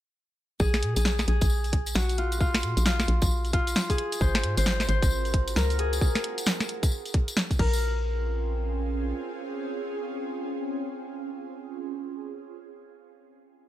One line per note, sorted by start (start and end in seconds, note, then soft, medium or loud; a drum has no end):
0.60 0.84 A#1 loud
0.60 0.96 G#4 medium
0.60 kick loud
0.60 tambourine medium
0.74 snare medium
0.74 closed hi-hat soft
0.74 tambourine soft
0.83 0.95 A#2 medium
0.83 closed hi-hat loud
0.96 1.26 A#1 medium
0.96 1.27 G#4 medium
0.96 closed hi-hat medium
0.96 tambourine medium
1.05 snare loud
1.05 tambourine medium
1.19 snare medium
1.19 closed hi-hat soft
1.19 tambourine soft
1.28 1.40 A#1 medium
1.28 3.55 G#4 medium
1.28 closed hi-hat medium
1.41 1.94 A#1 medium
1.41 kick loud
1.41 closed hi-hat medium
1.41 tambourine medium
1.50 tambourine medium
1.64 closed hi-hat soft
1.64 tambourine soft
1.73 kick loud
1.73 closed hi-hat loud
1.86 closed hi-hat medium
1.86 tambourine medium
1.95 2.65 A#1 medium
1.95 2.24 F#4 medium
1.95 snare loud
1.95 tambourine medium
2.09 closed hi-hat soft
2.09 tambourine soft
2.18 2.40 F4 medium
2.18 closed hi-hat medium
2.32 closed hi-hat medium
2.32 tambourine medium
2.41 2.85 F4 medium
2.41 kick loud
2.41 tambourine medium
2.54 snare medium
2.54 closed hi-hat soft
2.54 tambourine soft
2.63 2.75 A#2 medium
2.63 closed hi-hat loud
2.77 3.06 A#1 medium
2.77 closed hi-hat medium
2.77 tambourine medium
2.86 3.53 F4 medium
2.86 snare loud
2.86 tambourine medium
2.99 snare medium
2.99 closed hi-hat soft
2.99 tambourine soft
3.08 3.20 A#1 medium
3.08 closed hi-hat medium
3.22 3.74 A#1 medium
3.22 kick loud
3.22 closed hi-hat medium
3.22 tambourine medium
3.31 tambourine medium
3.45 closed hi-hat soft
3.45 tambourine soft
3.53 6.06 F4 medium
3.53 kick loud
3.53 closed hi-hat loud
3.67 closed hi-hat medium
3.67 tambourine medium
3.76 snare loud
3.76 tambourine medium
3.90 5.79 G#4 medium
3.90 kick medium
3.90 closed hi-hat soft
3.90 tambourine soft
3.98 closed hi-hat medium
4.12 closed hi-hat medium
4.12 tambourine medium
4.21 4.45 G#1 loud
4.21 6.00 C4 medium
4.21 6.00 F4 medium
4.21 5.77 F#4 medium
4.21 5.77 A#4 medium
4.21 4.57 C5 medium
4.21 kick loud
4.21 tambourine medium
4.35 snare medium
4.35 closed hi-hat soft
4.35 tambourine soft
4.43 4.56 G#2 medium
4.43 closed hi-hat loud
4.57 4.87 G#1 medium
4.57 4.88 C5 medium
4.57 closed hi-hat medium
4.57 tambourine medium
4.66 snare loud
4.66 tambourine medium
4.80 snare medium
4.80 closed hi-hat soft
4.80 tambourine soft
4.89 5.01 G#1 medium
4.89 6.87 C5 medium
4.89 closed hi-hat medium
5.02 5.55 G#1 medium
5.02 kick loud
5.02 closed hi-hat medium
5.02 tambourine medium
5.11 tambourine medium
5.25 closed hi-hat soft
5.25 tambourine soft
5.34 kick loud
5.34 closed hi-hat loud
5.47 closed hi-hat medium
5.47 tambourine medium
5.56 6.00 C#2 medium
5.56 7.59 A#4 medium
5.56 snare loud
5.56 tambourine medium
5.70 closed hi-hat soft
5.70 tambourine soft
5.79 8.06 G#4 medium
5.79 closed hi-hat medium
5.93 closed hi-hat medium
5.93 tambourine medium
6.01 kick loud
6.01 tambourine medium
6.15 snare medium
6.15 closed hi-hat soft
6.15 tambourine soft
6.24 closed hi-hat loud
6.38 closed hi-hat medium
6.38 tambourine medium
6.46 snare loud
6.46 tambourine medium
6.60 snare medium
6.60 closed hi-hat soft
6.60 tambourine soft
6.69 closed hi-hat medium
6.83 kick loud
6.83 closed hi-hat medium
6.83 tambourine medium
6.92 tambourine medium
7.05 closed hi-hat soft
7.05 tambourine soft
7.14 kick loud
7.14 closed hi-hat loud
7.28 closed hi-hat medium
7.28 tambourine medium
7.37 snare loud
7.37 tambourine medium
7.51 kick medium
7.51 closed hi-hat medium
7.51 tambourine soft
7.59 9.13 A#1 medium
7.59 11.66 C4 medium
7.59 11.66 C#4 medium
7.59 11.66 F4 medium
7.59 11.66 G#4 medium
7.59 11.66 A#4 medium
7.59 kick loud
7.59 crash medium
7.73 tambourine medium